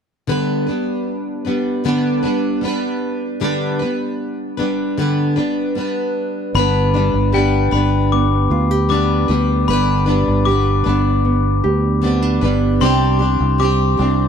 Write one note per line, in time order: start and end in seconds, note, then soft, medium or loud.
0.27 0.67 G2 medium
0.27 0.67 D3 medium
0.27 0.67 G3 medium
0.27 0.68 B3 medium
0.27 0.67 D4 medium
0.27 0.65 B4 medium
0.67 1.48 G3 soft
0.67 1.47 B3 soft
0.67 1.46 D4 soft
0.67 1.44 B4 soft
1.45 1.84 G3 soft
1.45 1.84 B3 soft
1.45 1.85 D4 soft
1.45 1.84 B4 soft
1.84 2.23 G2 medium
1.84 2.24 D3 medium
1.84 2.24 G3 medium
1.84 2.24 B3 medium
1.84 2.23 D4 medium
1.84 2.22 B4 medium
2.23 2.60 G3 soft
2.23 2.62 B3 soft
2.23 2.63 D4 soft
2.23 2.63 B4 soft
2.61 3.41 G3 medium
2.61 3.41 B3 medium
2.61 3.41 D4 medium
2.61 3.42 B4 medium
3.40 3.80 G2 medium
3.40 3.80 D3 medium
3.40 3.81 G3 medium
3.40 3.81 B3 medium
3.40 3.80 D4 medium
3.40 3.78 B4 medium
3.79 4.60 G3 soft
3.79 4.59 B3 soft
3.79 4.58 D4 soft
3.79 4.57 B4 soft
4.57 4.97 G3 soft
4.57 4.98 B3 soft
4.57 4.98 D4 soft
4.57 4.97 B4 soft
4.97 5.37 G2 medium
4.97 5.37 D3 medium
4.97 5.37 G3 medium
4.97 5.37 B3 medium
4.97 5.36 D4 medium
4.97 5.35 B4 medium
5.36 5.74 G3 soft
5.36 5.75 B3 soft
5.36 5.76 D4 soft
5.36 5.76 B4 soft
5.75 6.55 G3 medium
5.75 6.56 B3 medium
5.75 6.56 D4 medium
5.75 6.56 B4 medium
6.54 7.10 G1 medium
6.54 6.94 G2 medium
6.54 6.94 D3 medium
6.54 6.95 G3 medium
6.54 6.95 B3 medium
6.54 6.94 D4 medium
6.54 6.93 B4 medium
6.54 7.36 B5 medium
6.94 7.31 G3 soft
6.94 7.33 B3 soft
6.94 7.34 D4 soft
6.94 7.33 B4 soft
7.14 7.68 G1 medium
7.32 7.72 G3 medium
7.32 7.72 B3 medium
7.32 7.71 D4 medium
7.32 8.51 G4 medium
7.32 7.70 B4 medium
7.32 7.74 G5 medium
7.71 8.47 G1 medium
7.71 8.88 G3 soft
7.71 8.89 B3 soft
7.71 8.91 D4 medium
7.71 8.89 B4 medium
7.71 7.90 B5 medium
8.12 9.29 B3 medium
8.12 8.86 D6 medium
8.50 9.25 D2 medium
8.50 8.71 F4 medium
8.71 10.45 G4 soft
8.89 9.29 G3 medium
8.89 9.29 B3 medium
8.89 9.28 D4 medium
8.89 9.27 B4 medium
8.89 9.64 D6 medium
9.28 9.65 D2 medium
9.28 9.67 G3 soft
9.28 9.68 B3 soft
9.28 9.68 D4 soft
9.28 9.68 B4 medium
9.68 10.23 G1 medium
9.68 10.07 G2 medium
9.68 10.07 D3 medium
9.68 10.08 G3 medium
9.68 10.07 B3 medium
9.68 10.06 D4 medium
9.68 10.05 B4 medium
9.68 10.49 B5 medium
10.06 10.44 G3 soft
10.06 10.46 B3 soft
10.06 10.46 D4 medium
10.06 10.46 B4 soft
10.27 10.82 G1 medium
10.45 10.85 G3 medium
10.45 10.85 B3 medium
10.45 10.85 D4 medium
10.45 11.63 G4 medium
10.45 10.83 B4 medium
10.45 12.77 D6 medium
10.84 11.60 G1 medium
10.84 12.01 G3 soft
10.84 12.01 B3 soft
10.84 12.04 D4 soft
10.84 12.02 B4 medium
11.25 12.41 B3 medium
11.64 12.39 D2 medium
11.64 13.59 G4 medium
12.02 12.42 G3 medium
12.02 12.42 B3 medium
12.02 12.22 C4 medium
12.02 12.41 D4 medium
12.02 12.40 B4 medium
12.22 12.89 D4 soft
12.41 12.78 G1 medium
12.41 12.80 G3 soft
12.41 12.81 B3 soft
12.41 12.81 D4 medium
12.41 12.81 B4 medium
12.81 13.36 C2 medium
12.81 13.20 C3 medium
12.81 13.20 G3 medium
12.81 13.21 C4 medium
12.81 13.20 D4 medium
12.81 13.18 G4 medium
12.81 13.56 C6 medium
13.19 13.58 C4 soft
13.19 13.59 D4 soft
13.19 13.59 G4 soft
13.40 13.95 C2 medium
13.58 13.98 G3 medium
13.58 13.99 C4 medium
13.58 13.98 D4 medium
13.58 13.96 G4 medium
13.58 14.28 D6 medium
13.97 14.28 C2 medium
13.97 14.28 C4 soft
13.97 14.28 D4 soft
13.97 14.28 G4 medium